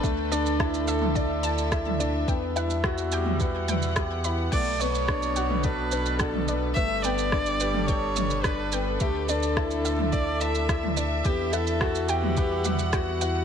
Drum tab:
CC |----------------|----------------|x---------------|----------------|
SH |x-xx-xx-x-xxx-x-|x-xx-xx-x-xxx-x-|x-xx-xx-x-xxx-x-|x-xx-xx-x-xxx-x-|
SD |----r-------r---|----r-------r---|----r-------r---|----r-------r---|
T2 |-------o-----o--|-------o--o-----|-------o-----o--|-------o--o-----|
BD |o---o---o---o---|o---o---o---o---|o---o---o---o---|o---o---o---o---|

CC |----------------|----------------|
SH |x-xx-xx-x-xxx-x-|x-xx-xx-x-xxx-x-|
SD |----r-------r---|----r-------r---|
T2 |-------o-----o--|-------o--o-----|
BD |o---o---o---o---|o---o---o---o---|